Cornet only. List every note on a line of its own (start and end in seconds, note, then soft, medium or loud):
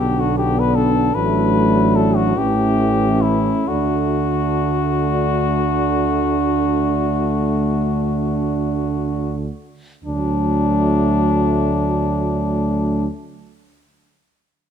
0.00 0.21 G4 medium
0.20 0.37 F#4 medium
0.38 0.61 G4 medium
0.59 0.77 B4 medium
0.75 1.16 A4 medium
1.14 1.97 B4 medium
1.95 2.17 A4 medium
2.16 2.39 F#4 medium
2.38 3.23 G4 medium
3.21 3.69 E4 medium
3.68 9.42 F#4 medium
10.04 13.07 D4 medium